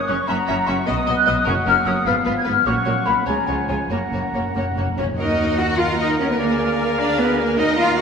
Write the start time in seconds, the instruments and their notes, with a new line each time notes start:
Already playing: french horn section A#3 C#4, oboe C#5
0.08 double bass section F#1, cello section F#2, viola section C#4, violin section A#4 C#5, flute section C#6
0.27 double bass section F#1, cello section F#2, french horn section F#3 C#4, viola section C#4, violin section F#4 E5, oboe F#5, flute section A#5
0.47 double bass section F#1, cello section F#2, viola section C#4, violin section F#4 E5
0.67 double bass section F#1, cello section F#2, viola section C#4, violin section F#4 E5, flute section C#6
0.86 double bass section B1, cello section B2, viola section B3, french horn section B3, violin section F#4 D#5, oboe D#5, flute section D#6
1.07 double bass section B1, cello section B2, viola section B3, violin section F#4 D#5
1.18 flute section F#6
1.27 double bass section B1, cello section B2, viola section B3, violin section F#4 D#5, flute section D#6
1.45 double bass section F#1, timpani F#2, cello section F#2, french horn section A#3, viola section C#4, violin section F#4 A#4, oboe F#5, flute section C#6
1.66 double bass section F#1, cello section F#2, viola section C#4, violin section F#4 A#4, flute section F6
1.85 double bass section F#1, cello section F#2, viola section C#4, violin section F#4 A#4, flute section D#6
2.06 double bass section G#1, cello section G#2, french horn section F3 B3, viola section B3, violin section F4 B4, oboe F5, flute section F6
2.25 double bass section G#1, cello section G#2, viola section B3, violin section F4 B4
2.37 flute section G#6
2.44 double bass section G#1, cello section G#2, viola section B3, violin section F4 B4, flute section F6
2.65 double bass section A#1, cello section A#2, french horn section F#3 C#4, viola section A#3, violin section F#4 C#5, oboe F#5, flute section C#6
2.85 double bass section A#1, cello section A#2, viola section A#3, violin section F#4 C#5
3.06 double bass section A#1, cello section A#2, viola section A#3, violin section F#4 C#5, flute section B5
3.26 double bass section C#2, cello section C#3, french horn section F3 C#4, viola section G#3, violin section F4 C#5, oboe G#5, flute section A#5
3.47 double bass section C#2, cello section C#3, viola section G#3, violin section F4 C#5, flute section F#5
3.68 double bass section C#2, cello section C#3, viola section G#3, violin section F4 C#5, flute section G#5
3.89 double bass section F#1, timpani F#2, cello section F#2, viola section A#3, french horn section A#3 C#4, violin section F#4 C#5, flute section F#5, oboe A#5
4.07 timpani F#2
4.12 double bass section F#1, cello section F#2, timpani F#2, viola section A#3, violin section F#4 C#5
4.23 timpani F#2
4.31 double bass section F#1, timpani F#2, cello section F#2, viola section A#3, violin section F#4 C#5
4.40 timpani F#2
4.47 timpani F#2
4.55 double bass section F#1, timpani F#2, cello section F#2, viola section A#3, violin section F#4 C#5
4.62 timpani F#2
4.71 timpani F#2
4.77 double bass section F#1, cello section F#2, timpani F#2, viola section A#3, violin section F#4 C#5
4.87 timpani F#2
4.96 double bass section F#1, timpani F#2, cello section F#2 C#4, viola section A#3, violin section F#4 C#5, flute section C#5
5.03 timpani F#2
5.12 timpani F#2
5.18 double bass section D#2, french horn section A#3 F#4, cello section D#4, oboe F#4, viola section A#4, flute section D#5, violin section D#5 F#5
5.59 cello section F#4, flute section F#5, violin section F#5
5.79 cello section F4, oboe A#4, flute section F5, violin section F5
5.99 cello section D#4, violin section D#5, flute section D#5
6.19 cello section C#4, flute section C#5, violin section C#5
6.29 cello section B3, flute section B4, violin section B4
6.38 double bass section D2, cello section A#3, french horn section A#3 G#4, flute section A#4, violin section A#4 G#5, oboe D5, viola section F5
6.79 cello section A#3, flute section A#4, violin section A#4
6.98 french horn section A#3 G#4, cello section D4, oboe A#4, flute section D5, violin section D5
7.18 cello section B3, flute section B4, violin section B4
7.39 cello section A#3, flute section A#4, violin section A#4
7.58 double bass section D#2, french horn section A#3 F#4, cello section D#4, viola section A#4 D#5, oboe A#4, flute section D#5, violin section D#5 F#5
7.77 cello section F4, flute section F5, violin section F5
7.98 cello section F#4, flute section F#5